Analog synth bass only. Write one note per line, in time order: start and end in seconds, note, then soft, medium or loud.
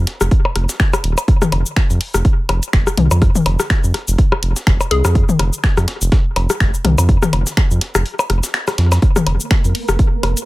0.21 0.30 F1 medium
0.56 0.67 F1 medium
1.04 1.15 D#1 medium
1.52 1.64 F1 loud
1.90 1.99 F2 loud
2.14 2.23 F1 medium
2.49 2.61 F1 medium
2.73 2.85 F1 medium
2.98 3.09 C2 medium
3.11 3.30 F2 medium
3.46 3.57 F1 loud
3.84 3.92 F2 loud
4.08 4.17 F1 medium
4.43 4.54 F1 medium
4.67 4.78 F1 medium
4.91 5.02 C2 medium
5.05 5.23 F2 medium
5.39 5.51 F1 loud
5.77 5.86 F2 loud
6.01 6.10 F1 medium
6.36 6.48 F1 medium
6.60 6.72 F1 medium
6.85 6.96 C2 medium
6.98 7.17 F2 medium
7.33 7.44 F1 loud
7.71 7.80 F2 loud
7.95 8.04 F1 medium
8.30 8.41 F1 medium
8.78 8.99 F2 medium
9.26 9.38 F1 loud
9.64 9.73 F2 loud
9.89 9.97 F1 medium
10.23 10.35 F1 medium